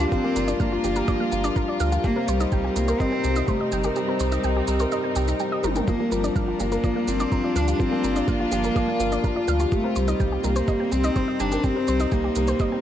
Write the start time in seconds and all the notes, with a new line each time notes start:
Already playing: F3 G3 A#3 D4 F4 A#4
0.00 G4
0.12 F3 C4 F4, kick, shaker
0.24 A#3 G4
0.36 G1 F3 A#4, shaker
0.48 D4 D5, shaker
0.59 G1 F3 A#3 F5, kick, shaker
0.72 F4
0.84 G1 F3 G4, shaker
0.96 G4 A#4, shaker
1.08 F3 D5, kick, shaker
1.20 A#3 F5
1.32 G1 F3 F4, shaker
1.44 D4 D5, shaker
1.56 F3 A#4, kick, shaker
1.68 F4 D5
1.80 D2 F3 F5, shaker
1.92 F4 G4, shaker
2.04 C3 G3 A#3 G4, kick, shaker
2.16 C4 A#4
2.28 C2 G3 C5, shaker
2.40 C4 D#4 D#5, shaker
2.52 C2 G3 G5, kick, shaker
2.64 G4
2.75 C2 G3 A#3 D#4 A#4, shaker
2.88 A#4 C5, shaker
3.00 G3 C4 D#5, kick, shaker
3.12 C4 G5
3.24 C2 G3 G4, shaker
3.36 D#4 D#5, shaker
3.48 G3 A3 C5, kick, shaker
3.60 G4 D#5
3.72 G1 G3 G5, shaker
3.84 G4 A#4, shaker
3.96 G3 G4, shaker
4.08 C4 A#4
4.20 C2 G3 C5, shaker
4.31 D#4 D#5, shaker
4.43 C2 G3 G5, shaker
4.55 G4
4.67 C2 G3 A#4, shaker
4.79 A#4 C5, shaker
4.91 G3 D#5, shaker
5.04 C4 G5
5.15 C2 G3 G4, shaker
5.27 D#4 A#5, shaker
5.39 G3 G4, shaker
5.51 G4 D#5
5.64 G1 G3 A#4, high tom, shaker
5.75 G4 A#4, mid tom, shaker
5.88 F3 G3 A#3 F4, kick, shaker
5.95 D4
5.99 A#3 G4
6.11 G1 F3 G3 A#4, shaker
6.23 D4 D5, shaker
6.35 G1 F3 F5, kick, shaker
6.47 F4
6.59 G1 F3 A#3 F4 G4, shaker
6.72 A#4, shaker
6.84 F3 D5, kick, shaker
6.95 A#3 F5
7.07 G1 F3 C4 F4, shaker
7.20 D4 D5, shaker
7.31 F3 A#4, kick, shaker
7.43 F4 D5
7.56 D2 F3 D4 F5, shaker
7.67 F4 G4, shaker
7.73 D4
7.79 F3 C4 F4, kick, shaker
7.91 A#3 G4
8.04 G1 F3 A#4, shaker
8.15 D4 D5, shaker
8.27 G1 F3 A#3 F5, kick, shaker
8.39 F4
8.51 G1 F3 G4, shaker
8.63 A#4, shaker
8.75 F3 D5, kick, shaker
8.88 A#3 F5
8.99 G1 F3 F4, shaker
9.11 D4 D5, shaker
9.23 F3 A#4, kick, shaker
9.36 F4 D5
9.48 D2 F3 F5, shaker
9.59 F4 G4, shaker
9.72 C3 G3 A3 G4, kick, shaker
9.79 C4
9.83 C4 A#4
9.96 C2 G3 C5, shaker
10.08 D#4 D#5, shaker
10.19 C2 G3 G5, kick, shaker
10.31 G4
10.44 C2 G3 A#3 A#4, shaker
10.56 C5, shaker
10.60 D#4
10.68 G3 D#5, kick, shaker
10.80 C4 G5
10.91 C2 G3 C4 G4, shaker
11.04 D#4 D#5, shaker
11.16 G3 C5, kick, shaker
11.28 G4 D#5
11.40 G1 G3 D4 G5, shaker
11.52 G4 A#4, shaker
11.64 G3 C4 G4, kick, shaker
11.75 C4 A#4
11.88 C2 G3 C5, shaker
11.99 D#4 D#5, shaker
12.12 C2 G3 A#3 G5, kick, shaker
12.24 G4
12.35 C2 G3 A#4, shaker
12.47 C5, shaker
12.59 G3 D#5, kick, shaker
12.71 C4 G5